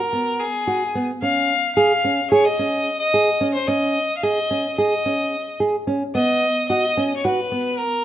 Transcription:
Already playing: A#4
0.13 B3
0.40 G#4
0.67 F#4
0.95 B3
1.22 C#4 F5
1.76 G#4 F5
2.04 C#4
2.31 G#4 C#5
2.45 D#5
2.59 C#4
3.00 D#5
3.14 G#4
3.41 C#4
3.55 C5
3.67 C#4 D#5
4.17 F5
4.23 G#4 D#5
4.51 C#4
4.78 G#4 D#5
5.06 C#4
5.60 G#4
5.87 C#4
6.15 B3 D#5
6.69 F#4 D#5
6.97 C#4
7.17 C#5
7.24 F#4 B4
7.52 B3
7.79 A#4

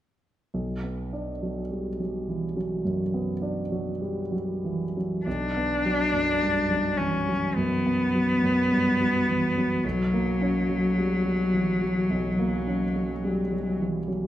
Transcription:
0.54 B1
0.83 B3
1.13 D4
1.42 F#3
1.71 G3
2.00 F#3
2.28 E3
2.56 F#3
2.85 F#2
3.14 B3
3.42 D4
3.72 F#3
4.02 G3
4.32 F#3
4.64 E3
4.97 F#3
5.26 B1 D4
5.57 B3
5.86 F#3
6.14 F#2
6.42 G2
6.70 F#3
6.97 E3 C#4
7.29 F#3
7.55 F#2 B3
7.86 B3
8.15 F#3
8.43 F#2
8.72 G2
9.01 F#3
9.28 E3
9.57 F#3
9.83 B1 F#3
10.13 A#3
10.41 C#4
10.69 F#3
10.97 G3
11.25 F#3
11.54 E3
11.82 F#3
12.10 B1
12.39 A#3
12.67 C#4
12.96 F#3
13.24 G3
13.52 F#3
13.80 E3
14.08 F#3

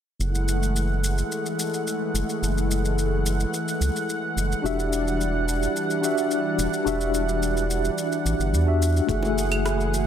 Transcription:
0.19 F#1 E3 G#3 A3 F#5, shaker
0.35 shaker
0.48 shaker
0.63 shaker
0.76 shaker
1.04 shaker
1.18 shaker
1.32 shaker
1.46 shaker
1.59 shaker
1.74 shaker
1.87 shaker
2.14 F#1, shaker
2.30 shaker
2.42 F#1, shaker
2.58 shaker
2.71 shaker
2.85 shaker
2.99 shaker
3.26 shaker
3.40 shaker
3.54 shaker
3.68 shaker
3.80 C#2, shaker
3.96 shaker
4.10 shaker
4.36 F#1, shaker
4.52 shaker
4.62 E1 E3 G3 D4 F#4 G4 E5, shaker
4.80 shaker
4.93 shaker
5.08 shaker
5.21 shaker
5.49 shaker
5.63 shaker
5.76 shaker
5.91 shaker
6.01 D4 F#4 G4 E5, shaker
6.18 shaker
6.31 shaker
6.58 E1, shaker
6.73 shaker
6.84 E1 D4 F#4 G4 E5, shaker
7.01 shaker
7.14 shaker
7.29 shaker
7.43 shaker
7.57 shaker
7.71 shaker
7.85 shaker
7.98 shaker
8.12 shaker
8.25 A1, shaker
8.39 G1, shaker
8.52 E2, shaker
8.67 D4 F#4 G4 E5
8.82 shaker
8.97 shaker
9.07 F#1 E3 A3 F#4 G#4 E5 F#5, kick, closed hi-hat, shaker
9.23 high bongo, shaker
9.38 shaker
9.52 closed hi-hat, claves, shaker
9.66 cross-stick, closed hi-hat, shaker
9.81 shaker
9.94 shaker

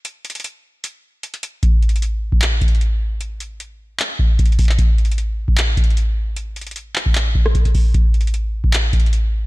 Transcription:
0.05 closed hi-hat
0.25 closed hi-hat
0.30 closed hi-hat
0.35 closed hi-hat
0.40 closed hi-hat
0.44 closed hi-hat
0.84 closed hi-hat
1.23 closed hi-hat
1.34 closed hi-hat
1.43 closed hi-hat
1.63 kick, closed hi-hat
1.82 closed hi-hat
1.89 closed hi-hat
1.96 closed hi-hat
2.02 closed hi-hat
2.32 kick
2.42 clap, closed hi-hat
2.61 kick, closed hi-hat
2.68 closed hi-hat
2.75 closed hi-hat
2.81 closed hi-hat
3.21 closed hi-hat
3.40 closed hi-hat
3.60 closed hi-hat
4.00 clap, closed hi-hat
4.19 kick
4.39 kick, closed hi-hat
4.46 closed hi-hat
4.52 closed hi-hat
4.59 kick, closed hi-hat, open hi-hat
4.65 clap, closed hi-hat
4.72 closed hi-hat
4.79 kick, closed hi-hat
4.98 closed hi-hat
5.05 closed hi-hat
5.12 closed hi-hat
5.18 closed hi-hat
5.48 kick
5.58 clap, closed hi-hat
5.77 kick, closed hi-hat
5.84 closed hi-hat
5.90 closed hi-hat
5.97 closed hi-hat
6.36 closed hi-hat
6.56 closed hi-hat
6.61 closed hi-hat
6.67 closed hi-hat
6.71 closed hi-hat
6.76 closed hi-hat
6.96 clap
7.06 kick
7.15 clap, closed hi-hat
7.35 kick
7.46 cross-stick
7.55 kick, closed hi-hat
7.65 kick, closed hi-hat
7.75 kick, open hi-hat
7.94 kick, closed hi-hat
8.14 closed hi-hat
8.21 closed hi-hat
8.27 closed hi-hat
8.34 closed hi-hat
8.64 kick
8.73 clap, closed hi-hat
8.93 kick, closed hi-hat
9.00 closed hi-hat
9.06 closed hi-hat
9.13 closed hi-hat

